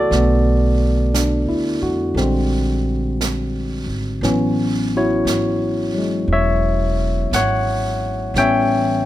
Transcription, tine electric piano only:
Already playing: C#3 E3 F#3 A3 B3 E4 F#4 A4 C#5 D5
0.09 D3 A3
0.14 B3
1.14 D4
1.49 E4
1.83 F#4
2.16 D3 G3 G#3 C4
4.23 E3 F#3 B3 C#4
4.97 E4 F#4 C#5
5.95 F#3 G#3
6.33 C#5 E5
7.34 C#5 F#5
8.36 E3 G3 B3 C#4 C#5 E5 G5

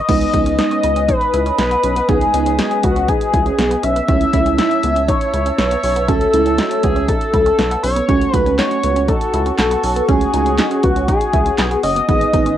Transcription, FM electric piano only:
0.09 G#3 B3 D#4
0.34 G#3 B3 D#4
0.59 G#3 B3 D#4
2.09 G#3 B3 D#4
2.34 G#3 B3 D#4
2.59 G#3 B3 F#4
4.09 A3 C#4 E4
4.34 A3 C#4 E4
4.59 A3 C#4 E4
6.08 A3 C#4 F#4
6.33 A3 C#4 E4
6.59 A3 C#4 F#4
8.09 A3 C#4 F#4
8.34 A3 C#4 F#4
8.59 A3 C#4 F#4
10.09 A3 C#4 F#4
10.34 A3 C#4 F#4
10.59 A3 C#4 F#4
12.08 B3 D#4 G#4
12.34 B3 D#4 G#4

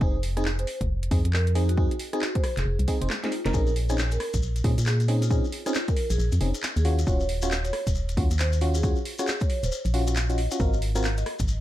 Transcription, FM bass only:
0.01 F1
0.81 F1
1.11 F2
1.25 F2
2.57 F1
2.66 F1
2.79 C2
3.01 F1
3.46 F1
3.54 A#1
4.34 A#1
4.64 A#2
4.78 A#2
6.10 A#1
6.18 A#1
6.32 F2
6.41 F1
6.76 D#2
7.07 D#1
7.87 D#1
8.17 D#2
8.31 D#2
9.63 D#1
9.85 A#1
10.60 G#1
11.40 G#1

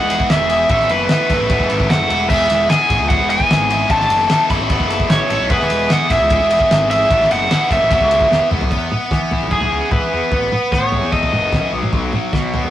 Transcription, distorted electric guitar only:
Already playing: B3 E4
0.10 E4 G#4
0.50 E4 G#4
0.69 B3 E4 A4
1.10 B3 E4 A4
1.31 E4 A4
1.51 B3 E4 A4
1.71 E4 A4
2.10 E4 A4
2.31 B3 E4 G#4
2.70 B3 E4 G#4
2.90 E4 G#4
3.10 B3 E4 G#4
3.29 E4 G#4
3.70 E4 G#4
3.90 B3 E4 A4
4.30 B3 E4 A4
4.51 E4 A4
4.71 B3 E4 A4
4.90 E4 A4
5.30 E4 A4
5.50 B3 E4 G#4
5.90 B3 E4 G#4
6.09 E4 G#4
6.30 B3 E4 G#4
6.50 E4 G#4
6.90 E4 G#4
7.11 B3 E4 A4
7.50 B3 E4 A4
7.70 E4 A4
7.91 F#3 B3 E4
8.11 B3 E4
8.51 B3 E4
8.72 B3
8.92 B3
9.12 B3
9.32 E4
9.51 G#4
9.72 B3
9.93 E4
10.12 B3
10.32 B3
10.52 B3
10.72 B3
10.93 E4
11.12 A4
11.32 B3
11.52 E4
11.72 F#3
11.93 F#3
12.14 F#3
12.33 F#3
12.54 B3

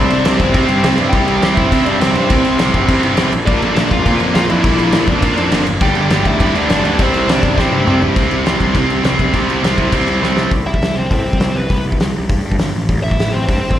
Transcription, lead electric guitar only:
Already playing: D4 D5
0.37 C4 C5
1.10 G4 G5
1.55 E4 E5
1.85 D4 D5
2.00 C4 C5
2.16 C4 C5
3.46 D4 D5
3.91 F4 F5
4.35 F4 F5
4.49 E4 E5
5.09 D4 D5
5.81 G4 G5
6.27 E4 E5
6.56 D4 D5
6.87 D4 D5
7.02 C4 C5
7.30 D4 D5
7.59 C4 C5
10.67 E4 E5
10.95 C4 C5
11.10 C4 C5
11.56 B3 B4
13.04 E4 E5
13.32 C4 C5
13.46 C4 C5

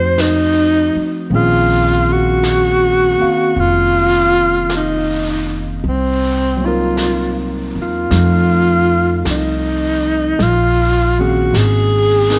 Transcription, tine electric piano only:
Already playing: F3 A3 C4 D#4 F#4
1.30 D#3 A#3 C4 C#4
1.35 G#4
3.19 A#3 C4 F5
6.57 F#3 A#3
6.62 C4 D#4
6.68 A#4
8.11 F3 A3 C4 D#4 A4
11.19 D#3 A#3 C4 C#4 G#4
12.30 C4 D#4 A#4

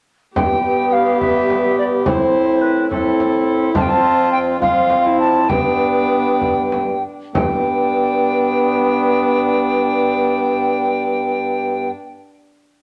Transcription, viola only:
0.37 G4
2.07 E4
2.91 E4
3.75 F4
4.62 F4
5.06 E4
5.49 D4
7.35 D4

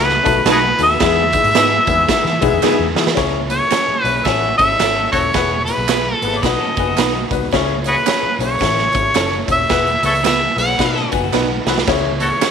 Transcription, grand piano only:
Already playing: A3 B3 D#4 F#4 A4
0.23 A3 B3 D#4 F#4 A4
0.46 A3 B3 D#4 F#4 A4
0.79 A3 B3 D#4 F#4 A4
1.01 G#3 B3 D#4 E4 G#4
1.34 G#3 B3 D#4 E4 G#4
1.56 G#3 B3 D#4 E4 G#4
1.88 G#3 B3 D#4 E4 G#4
2.08 G#3 B3 D#4 E4 G#4
2.41 G#3 B3 D#4 E4 G#4
2.62 G#3 B3 D#4 E4 G#4
2.95 G#3 B3 D#4 E4 G#4
3.15 C#4 E4 G#4 C#5
3.49 C#4 E4 G#4 C#5
3.72 C#4 E4 G#4 C#5
4.04 C#4 E4 G#4 C#5
4.26 C#4 E4 A4 C#5
4.59 C#4 E4 A4 C#5
4.80 C#4 E4 A4 C#5
5.12 C#4 E4 A4 C#5
5.34 B3 E4 G#4 B4
5.69 B3 E4 G#4 B4
5.89 B3 E4 G#4 B4
6.23 B3 E4 G#4 B4
6.44 B3 D#4 F#4 B4
6.78 B3 D#4 F#4 B4
6.98 B3 D#4 F#4 B4
7.31 B3 D#4 F#4 B4
7.53 C#4 E4 G#4 C#5
7.85 C#4 E4 G#4 C#5
8.06 C#4 E4 G#4 C#5
8.40 C#4 E4 G#4 C#5
8.61 C#4 E4 A4 C#5
8.94 C#4 E4 A4 C#5
9.15 C#4 E4 A4 C#5
9.48 C#4 E4 A4 C#5
9.69 B3 E4 G#4 B4
10.03 B3 E4 G#4 B4
10.24 B3 E4 G#4 B4
10.56 B3 E4 G#4 B4
10.79 B3 D#4 F#4 B4
11.11 B3 D#4 F#4 B4
11.33 B3 D#4 F#4 B4
11.66 B3 D#4 F#4 B4
11.87 C#4 E4 G#4 C#5
12.20 C#4 E4 G#4 C#5
12.41 C#4 E4 G#4 C#5

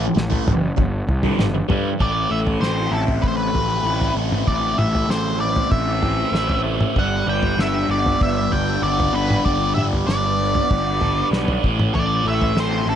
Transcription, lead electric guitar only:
2.02 D5
2.31 E5
2.61 C5
2.92 A4
3.22 B4
3.28 C5
3.37 B4
4.47 D5
4.78 E5
5.10 C5
5.40 D5
5.71 E5
6.99 F#5
7.29 G5
7.61 E5
7.91 D5
8.23 E5
8.52 G5
8.83 D5
9.14 B4
9.45 D5
9.75 E5
10.07 D5
11.95 D5
12.28 E5
12.60 C5
12.89 A4

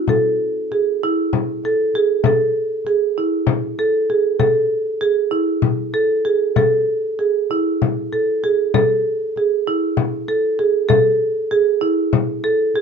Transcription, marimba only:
0.09 A4
0.72 G#4
1.03 E4
1.65 A4
1.95 G#4
2.26 A4
2.87 G#4
3.18 E4
3.79 A4
4.10 G#4
4.40 A4
5.01 G#4
5.31 E4
5.94 A4
6.25 G#4
6.57 A4
7.19 G#4
7.51 E4
8.13 A4
8.44 G#4
8.74 A4
9.37 G#4
9.67 E4
10.28 A4
10.59 G#4
10.89 A4
11.51 G#4
11.81 E4
12.44 A4
12.76 G#4

